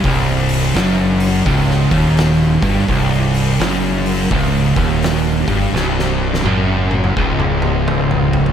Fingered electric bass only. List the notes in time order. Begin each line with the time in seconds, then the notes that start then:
0.04 C1
0.75 F#1
1.46 C#1
1.91 D#1
2.62 G1
2.88 C1
3.60 F#1
4.31 C#1
4.77 D#1
5.48 G1
5.73 C1
6.44 F#1
7.17 C#1